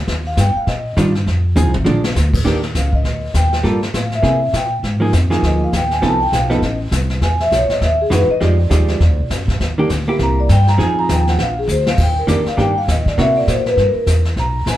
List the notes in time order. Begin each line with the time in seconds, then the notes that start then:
0.08 D#2, brush sweep, kick, snare
0.27 F5
0.37 G2 G5, kick, snare, hi-hat pedal
0.55 F5, muted upright bass stroke
0.67 A#2 D#5, brush sweep, kick, snare
0.97 G2 D#3 G3 D4 F4, kick, snare, hi-hat pedal
1.15 snare
1.26 F2, brush sweep, kick, snare
1.56 D#2 F3 C4 D#4 G#4, hi-hat pedal, mid tom
1.66 C2
1.74 G#1, mid tom
1.85 A#1 F3 G#3 D4, mid tom
2.04 snare
2.15 D2, snare, hi-hat pedal
2.34 kick, crash
2.45 D#2 D#3 A#3 D4 G4, brush sweep, kick, snare
2.63 snare
2.75 C#2 F5, kick, snare, hi-hat pedal
2.93 D#5, kick
3.04 D2, brush sweep, kick, snare
3.34 D#2 G5, kick, snare, hi-hat pedal
3.53 snare
3.63 G2 G3 A#3 F4 A4, brush sweep, kick, snare
3.83 snare
3.93 A2 F5, kick, snare, hi-hat pedal
4.11 E5, snare
4.23 C3 A#3 E4 G#4, brush sweep, kick, snare
4.53 A#2 G5, kick, snare, hi-hat pedal
4.83 G#2, brush sweep, kick, snare
5.00 F3 A#3 D#4 G#4
5.13 F2, kick, snare, hi-hat pedal
5.30 F3 A#3 D#4 G#4, snare
5.42 D2 D#5, brush sweep, kick, snare
5.64 F5
5.72 D#2 G5, kick, snare, hi-hat pedal
5.91 G#5, snare
6.02 C2 F3 B3 D#4 A4 A5, brush sweep, kick, snare
6.22 G5
6.32 B1 F5, kick, snare, hi-hat pedal
6.50 F3 B3 D#4 A4 D#5, snare
6.62 A1, brush sweep, kick, snare
6.91 C2, kick, snare, hi-hat pedal
7.10 snare
7.21 E2 G#5, brush sweep, kick, snare
7.40 E5, snare
7.51 B1, kick, snare, hi-hat pedal
7.55 C#5
7.68 D#5, muted upright bass stroke, snare
7.81 D#2 E5, brush sweep, kick, snare
8.01 G#4
8.10 F#2 E3 G#3 D#4 F#4 B4, kick, snare, hi-hat pedal
8.28 D#5, muted upright bass stroke
8.40 F2 F3 G#3 D#4 G4 D5, brush sweep, kick, snare
8.70 D#2 F3 G#3 D#4 G4, kick, snare, hi-hat pedal
8.88 snare
9.00 E2, brush sweep, kick, snare
9.09 D2
9.20 B1
9.30 F#2, kick, snare, hi-hat pedal
9.48 kick, snare
9.60 D#2, brush sweep, kick, snare
9.78 D#3 A#3 D4 G4
9.89 D2, kick, snare, hi-hat pedal
10.08 A#3 E4 G4
10.19 C2 A#5, brush sweep, kick, snare
10.40 D5
10.49 G2 G5, kick, snare, hi-hat pedal
10.67 A#5, snare
10.78 F2 F3 C4 D#4 G#4 G#5, brush sweep, kick, snare
10.99 A#5
11.09 D#2 G5, kick, snare, hi-hat pedal
11.27 F#5, snare
11.38 A#1 F5, brush sweep, kick, snare
11.59 G#4
11.67 D2 C5, hi-hat pedal
11.87 F5, snare
11.98 D#2, brush sweep, kick, snare, crash
12.02 G5
12.19 A#4
12.27 F2 D#3 A#3 D4 G4 D5, kick, snare, hi-hat pedal
12.45 F5, muted upright bass stroke, snare
12.57 G2 D#3 A#3 D4 G4 G5, brush sweep, kick, snare
12.78 F5
12.88 D#2 D#5, kick, snare, hi-hat pedal
13.06 D5, kick, snare
13.18 C3 A#3 E4 F#4 E5, brush sweep, kick, snare
13.37 D5
13.47 A#2 C5, kick, snare, hi-hat pedal
13.66 B4, snare
13.77 G2 A#4, brush sweep, kick, snare
13.95 muted upright bass stroke
14.06 E2, kick, snare, hi-hat pedal
14.25 snare
14.36 B1 A#5, brush sweep, kick, snare
14.66 A#1 G#5, kick, snare, hi-hat pedal